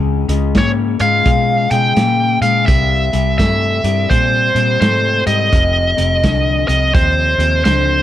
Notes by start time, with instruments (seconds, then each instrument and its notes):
Already playing: fingered electric bass C#2, clean electric guitar C#3 G#3
0.28 fingered electric bass C#2, clean electric guitar C#3 G#3, closed hi-hat
0.55 fingered electric bass G#2, clean electric guitar C#3 A#3, lead electric guitar C#5, kick, snare, closed hi-hat
1.00 fingered electric bass G#2, clean electric guitar C#3 G#3, lead electric guitar F5, closed hi-hat
1.25 fingered electric bass B2, clean electric guitar C#3 G#3, kick, closed hi-hat
1.71 fingered electric bass B2, clean electric guitar C#3 G#3, lead electric guitar G5, closed hi-hat
1.97 fingered electric bass A#2, clean electric guitar C#3 A#3, snare, closed hi-hat
2.41 fingered electric bass A#2, clean electric guitar C#3 G#3, lead electric guitar F5, closed hi-hat
2.66 fingered electric bass C2, clean electric guitar C3 G3, lead electric guitar E5, kick, closed hi-hat
3.13 fingered electric bass C2, clean electric guitar C3 G3, closed hi-hat
3.38 fingered electric bass G2, clean electric guitar C3 A3, lead electric guitar E5, kick, snare, closed hi-hat
3.84 fingered electric bass G2, clean electric guitar C3 G3, closed hi-hat
4.10 fingered electric bass A#2, clean electric guitar C3 G3, lead electric guitar C5, kick, closed hi-hat
4.55 fingered electric bass A#2, clean electric guitar C3 G3, closed hi-hat
4.80 fingered electric bass G#2, clean electric guitar C3 A3, lead electric guitar C5, snare, closed hi-hat
5.26 fingered electric bass G#2, clean electric guitar C3 G3, lead electric guitar D#5, closed hi-hat
5.52 fingered electric bass F1, clean electric guitar F2 C3, kick, closed hi-hat
5.97 fingered electric bass F1, clean electric guitar F2 C3, closed hi-hat
6.23 fingered electric bass C2, clean electric guitar F2 D3, kick, snare, closed hi-hat
6.68 fingered electric bass C2, clean electric guitar F2 C3, lead electric guitar D#5, closed hi-hat
6.93 fingered electric bass D#2, clean electric guitar F2 C3, lead electric guitar C5, kick, closed hi-hat
7.38 fingered electric bass D#2, clean electric guitar F2 C3, closed hi-hat
7.64 fingered electric bass C#2, clean electric guitar F2 D3, lead electric guitar C5, snare, closed hi-hat